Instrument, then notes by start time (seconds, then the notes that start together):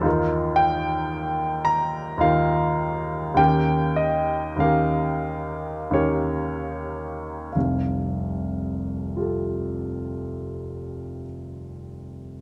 grand piano
0.01 D#2 D#3 D#4 F4
0.05 A#4
0.56 G5
1.65 A#5
2.18 D#2 D#3 D#4 F4 F5
2.22 A#4
3.34 D#2 D#3 C#4 G5
3.38 G4 A#4
3.96 D#5
4.56 D#2 D#3 C#4 G4 F5
4.61 A#4
5.91 D#2 D#3 C#4 G4 C#5
5.95 A#4
7.53 F1 C2 F5
9.16 F4 G4
9.21 A4